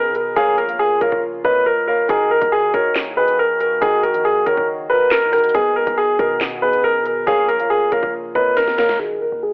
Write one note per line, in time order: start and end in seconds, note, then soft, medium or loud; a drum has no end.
0.00 0.11 F#2 loud
0.00 0.38 B2 loud
0.00 0.33 D#3 medium
0.00 0.35 B3 medium
0.00 0.38 B3 medium
0.00 0.38 D#4 medium
0.00 0.35 G#4 medium
0.00 0.39 G#4 loud
0.00 0.13 A#4 loud
0.10 0.35 B2 loud
0.15 0.35 A#4 medium
0.15 closed hi-hat medium
0.36 0.57 A#1 loud
0.36 2.08 C#3 medium
0.36 0.57 A#3 loud
0.36 5.51 A#3 medium
0.36 2.08 F4 medium
0.36 0.56 G#4 loud
0.36 0.57 A#4 medium
0.36 0.57 C#5 medium
0.36 0.58 F5 loud
0.36 kick loud
0.36 closed hi-hat medium
0.58 0.79 A#1 loud
0.58 0.78 A#4 medium
0.58 closed hi-hat medium
0.68 0.89 A#3 medium
0.68 0.89 A#4 medium
0.68 0.90 C#5 medium
0.68 0.90 F5 medium
0.68 closed hi-hat medium
0.79 0.99 G#4 loud
1.01 1.12 A#1 loud
1.01 1.28 A#3 medium
1.01 1.29 A#4 medium
1.01 1.21 A#4 medium
1.01 1.29 C#5 medium
1.01 1.29 F5 medium
1.01 kick loud
1.01 closed hi-hat medium
1.12 1.43 A#1 loud
1.12 kick loud
1.44 1.65 F2 loud
1.44 1.72 A#3 medium
1.44 1.72 A#4 medium
1.44 1.64 B4 medium
1.44 1.72 C#5 medium
1.44 1.72 D#5 medium
1.44 kick medium
1.66 1.86 A#4 medium
1.87 2.01 A#3 medium
1.87 2.01 A#4 medium
1.87 2.07 A#4 medium
1.87 2.01 C#5 medium
1.87 2.02 F5 medium
2.08 2.40 D#1 loud
2.08 2.50 D#3 loud
2.08 5.51 D#3 medium
2.08 2.50 D#4 loud
2.08 5.51 F#4 medium
2.08 2.51 F#4 medium
2.08 2.29 G#4 loud
2.08 2.51 A#4 loud
2.08 kick loud
2.08 closed hi-hat medium
2.31 2.50 A#4 medium
2.42 2.73 D#2 loud
2.42 kick loud
2.42 closed hi-hat medium
2.52 2.72 G#4 loud
2.73 3.78 D#1 loud
2.73 3.01 D#3 medium
2.73 3.01 D#4 medium
2.73 3.02 F#4 medium
2.73 2.94 A#4 medium
2.73 3.02 C#5 medium
2.73 kick loud
2.73 closed hi-hat medium
2.96 snare loud
2.96 clap loud
2.96 closed hi-hat medium
3.16 3.58 D#3 medium
3.16 3.58 D#4 medium
3.16 3.59 F#4 medium
3.16 3.59 G#4 medium
3.16 3.37 B4 medium
3.28 closed hi-hat medium
3.39 3.58 A#4 medium
3.60 3.80 A#4 medium
3.60 closed hi-hat medium
3.81 4.03 D#1 loud
3.81 4.02 D#3 loud
3.81 4.02 D#4 medium
3.81 4.03 F#4 medium
3.81 4.01 G#4 loud
3.81 4.03 A#4 loud
3.81 kick loud
3.81 closed hi-hat medium
4.03 4.45 A#1 loud
4.03 4.23 A#4 medium
4.03 closed hi-hat medium
4.14 4.35 D#3 medium
4.14 4.35 D#4 medium
4.14 4.35 F#4 medium
4.14 4.35 A#4 medium
4.14 closed hi-hat medium
4.25 4.45 G#4 medium
4.46 4.57 D#1 loud
4.46 4.74 D#3 medium
4.46 4.74 D#4 medium
4.46 4.74 F#4 medium
4.46 4.66 A#4 medium
4.46 4.75 C#5 medium
4.46 kick loud
4.46 closed hi-hat medium
4.57 5.24 F#1 loud
4.57 kick loud
4.89 5.17 D#3 medium
4.89 5.17 D#4 medium
4.89 5.18 F#4 medium
4.89 5.18 A#4 medium
4.89 5.09 B4 medium
5.11 5.31 A#4 medium
5.11 snare loud
5.11 clap medium
5.11 closed hi-hat medium
5.22 5.40 A#2 loud
5.32 5.46 D#3 medium
5.32 5.47 D#4 medium
5.32 5.47 F#4 medium
5.32 5.52 A#4 medium
5.32 5.47 A#4 medium
5.32 cross-stick loud
5.32 closed hi-hat medium
5.32 open hi-hat medium
5.38 5.54 F#1 loud
5.38 closed hi-hat medium
5.44 closed hi-hat medium
5.49 closed hi-hat medium
5.54 5.78 B1 loud
5.54 5.96 B2 loud
5.54 7.25 D#3 medium
5.54 7.26 B3 medium
5.54 5.96 B3 medium
5.54 5.96 D#4 medium
5.54 7.26 G#4 medium
5.54 5.74 G#4 loud
5.54 5.96 G#4 loud
5.54 kick loud
5.54 closed hi-hat medium
5.76 5.86 C#2 loud
5.76 5.96 A#4 medium
5.87 6.18 B1 loud
5.87 kick loud
5.87 closed hi-hat medium
5.98 6.17 G#4 loud
6.19 6.46 B2 medium
6.19 6.75 B2 loud
6.19 6.47 B3 medium
6.19 6.47 D#4 medium
6.19 6.47 G#4 medium
6.19 6.39 A#4 medium
6.19 kick loud
6.19 closed hi-hat medium
6.41 snare loud
6.41 clap loud
6.41 closed hi-hat medium
6.61 7.03 B2 medium
6.61 7.03 B3 medium
6.61 7.04 D#4 medium
6.61 7.04 G#4 medium
6.61 6.82 B4 medium
6.73 7.02 F#2 loud
6.73 closed hi-hat medium
6.84 7.04 A#4 medium
7.00 7.26 B2 loud
7.06 7.26 A#4 medium
7.06 closed hi-hat medium
7.27 7.48 A#1 loud
7.27 8.98 C#3 medium
7.27 7.48 A#3 loud
7.27 8.98 A#3 medium
7.27 8.98 F4 medium
7.27 7.47 G#4 loud
7.27 7.48 A#4 medium
7.27 7.48 C#5 loud
7.27 7.48 F5 loud
7.27 kick loud
7.27 closed hi-hat medium
7.48 7.70 A#1 loud
7.48 7.68 A#4 medium
7.48 closed hi-hat medium
7.59 7.80 A#3 medium
7.59 7.80 A#4 medium
7.59 7.80 C#5 medium
7.59 7.81 F5 medium
7.59 closed hi-hat medium
7.70 7.90 G#4 loud
7.91 8.02 A#1 loud
7.91 8.19 A#3 medium
7.91 8.19 A#4 medium
7.91 8.12 A#4 medium
7.91 8.20 C#5 medium
7.91 8.20 F5 medium
7.91 kick loud
7.91 closed hi-hat medium
8.03 8.34 A#1 loud
8.03 kick loud
8.34 8.97 F2 loud
8.34 8.62 A#3 medium
8.34 8.63 A#4 medium
8.34 8.55 B4 medium
8.34 8.63 C#5 medium
8.34 8.63 D#5 medium
8.34 kick medium
8.57 8.76 A#4 medium
8.57 snare medium
8.57 closed hi-hat medium
8.68 snare medium
8.77 8.91 A#3 medium
8.77 8.92 A#4 medium
8.77 8.98 A#4 medium
8.77 8.92 C#5 medium
8.77 8.92 F5 medium
8.77 snare loud
8.77 open hi-hat medium
8.89 snare loud
8.99 9.31 D#1 loud
8.99 9.41 D#3 medium
8.99 9.53 D#3 medium
8.99 9.53 A#3 medium
8.99 9.41 D#4 medium
8.99 9.53 F#4 medium
8.99 9.41 F#4 medium
8.99 9.20 G#4 medium
9.21 9.41 A#4 medium
9.32 9.53 D#2 loud
9.43 9.53 G#4 medium